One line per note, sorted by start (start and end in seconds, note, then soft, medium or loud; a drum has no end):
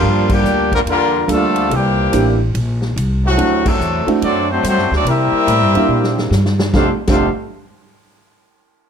0.00 0.43 G2 medium
0.00 0.27 A#2 medium
0.00 0.27 D3 medium
0.00 0.27 F3 medium
0.00 0.41 F3 loud
0.00 0.28 G3 medium
0.00 0.28 A#3 medium
0.00 0.41 A#3 loud
0.00 0.28 D4 medium
0.00 0.41 D4 loud
0.00 0.28 F4 medium
0.00 0.41 G4 loud
0.30 0.72 A#2 medium
0.30 0.71 D3 medium
0.30 0.72 G3 medium
0.30 0.73 A#3 medium
0.30 0.73 D4 medium
0.30 0.73 G4 loud
0.30 kick loud
0.30 crash medium
0.43 0.85 D2 medium
0.43 hi-hat pedal medium
0.72 0.79 D3 medium
0.72 0.79 F3 medium
0.72 0.81 G3 loud
0.72 0.79 A#3 medium
0.72 0.81 D4 medium
0.72 0.81 F4 medium
0.72 0.81 A#4 loud
0.72 kick medium
0.72 ride medium
0.85 1.27 E2 medium
0.85 1.26 D3 loud
0.85 1.26 A#3 loud
0.85 1.26 F4 medium
0.85 ride medium
0.90 1.28 G3 loud
0.90 1.28 D4 medium
0.90 1.28 F4 loud
0.90 1.28 A#4 loud
1.27 1.69 D2 loud
1.27 1.72 D3 medium
1.27 1.72 F3 medium
1.27 1.70 G3 medium
1.27 1.72 A3 medium
1.27 1.70 A#3 medium
1.27 1.70 D4 medium
1.27 1.70 F4 medium
1.27 1.71 A4 medium
1.27 hi-hat pedal medium
1.27 ride medium
1.33 1.73 G3 medium
1.33 1.73 D4 medium
1.33 1.73 F4 medium
1.33 1.73 A4 loud
1.56 ride medium
1.70 2.11 C2 medium
1.70 2.40 A#2 medium
1.70 2.40 E3 medium
1.70 2.40 G3 medium
1.70 2.41 A#3 medium
1.70 2.41 C4 medium
1.70 ride medium
1.75 2.42 G4 loud
2.12 2.53 A1 loud
2.12 2.37 A#3 medium
2.12 2.37 C4 medium
2.12 2.37 D4 medium
2.12 2.37 E4 medium
2.12 2.37 G4 medium
2.12 hi-hat pedal medium
2.12 ride medium
2.54 2.95 A#1 medium
2.54 ride medium
2.82 snare medium
2.96 3.37 C2 loud
2.96 hi-hat pedal medium
2.96 ride medium
3.24 3.63 A2 medium
3.24 3.63 C3 medium
3.24 3.63 F#3 medium
3.24 3.64 A3 medium
3.24 3.64 C4 medium
3.24 3.64 F#4 medium
3.37 3.79 D2 medium
3.37 3.62 A3 medium
3.37 3.62 C4 medium
3.37 3.62 D4 medium
3.37 3.62 E4 medium
3.37 3.63 F#4 medium
3.37 ride medium
3.65 4.07 C3 medium
3.65 4.07 F#3 medium
3.65 4.09 F#3 medium
3.65 4.07 A3 medium
3.65 4.09 C4 medium
3.65 4.08 D4 medium
3.65 4.08 A4 loud
3.65 kick loud
3.65 crash medium
3.79 4.05 E2 loud
3.79 hi-hat pedal medium
4.07 4.20 A3 medium
4.07 4.21 C4 medium
4.07 4.21 D4 medium
4.07 4.21 E4 medium
4.07 4.21 F#4 medium
4.07 muted upright bass stroke soft
4.07 ride medium
4.21 4.63 F#2 medium
4.21 4.47 F#3 medium
4.21 4.47 A3 medium
4.21 4.48 C4 medium
4.21 4.47 D4 medium
4.21 4.48 F#4 medium
4.21 4.48 A4 medium
4.21 4.49 D5 loud
4.21 ride medium
4.49 4.63 F#3 medium
4.49 4.63 A3 medium
4.49 4.65 A3 medium
4.49 4.63 C4 medium
4.49 4.66 D4 medium
4.49 4.66 F#4 medium
4.49 4.66 C5 medium
4.63 4.78 G2 loud
4.63 4.89 F#3 medium
4.63 4.89 A3 medium
4.63 4.89 C4 medium
4.63 hi-hat pedal medium
4.63 ride medium
4.68 4.92 A3 medium
4.68 4.91 D4 medium
4.68 4.91 F#4 medium
4.68 4.91 C5 loud
4.78 4.91 F#2 medium
4.78 snare soft
4.91 5.04 D2 medium
4.91 5.06 F#3 medium
4.91 5.06 A3 medium
4.91 5.07 C4 medium
4.91 5.06 D4 medium
4.91 snare medium
4.95 5.08 F#4 medium
4.95 5.08 A4 medium
4.95 5.08 D5 loud
5.05 5.30 C3 medium
5.05 6.28 G3 loud
5.05 6.28 A#3 medium
5.05 6.29 C4 loud
5.05 6.28 E4 loud
5.05 6.29 G4 loud
5.05 6.29 A#4 loud
5.05 ride medium
5.09 6.29 E5 loud
5.32 muted upright bass stroke soft
5.47 5.61 A2 loud
5.47 hi-hat pedal medium
5.47 ride medium
5.61 5.74 G2 medium
5.75 5.88 E2 medium
5.75 6.29 A#3 medium
5.75 6.29 C4 medium
5.75 6.29 D4 medium
5.75 6.29 E4 medium
5.75 6.29 G4 medium
5.75 ride medium
5.88 6.30 A#2 medium
6.04 snare medium
6.18 snare medium
6.31 6.72 G2 medium
6.31 snare medium
6.31 hi-hat pedal medium
6.46 snare medium
6.59 snare loud
6.73 6.89 F1 medium
6.73 6.89 F2 medium
6.73 6.89 C3 medium
6.73 6.89 D3 medium
6.73 6.89 A3 medium
6.73 6.90 A3 medium
6.73 6.90 C4 medium
6.73 6.91 D4 medium
6.73 6.90 D4 medium
6.73 6.91 F4 medium
6.73 6.91 G4 medium
6.73 6.90 A4 medium
6.73 6.90 C5 medium
6.73 6.90 F5 medium
6.73 kick loud
6.73 snare medium
7.08 7.27 F1 medium
7.08 7.28 F2 medium
7.08 7.28 C3 medium
7.08 7.28 D3 medium
7.08 7.26 A3 medium
7.08 7.28 A3 medium
7.08 7.27 C4 medium
7.08 7.27 D4 medium
7.08 7.27 F4 medium
7.08 7.27 G4 medium
7.08 7.29 C5 medium
7.08 kick loud
7.08 snare medium
7.08 crash medium
7.12 7.30 D4 medium
7.12 7.30 A4 medium
7.12 7.30 F5 medium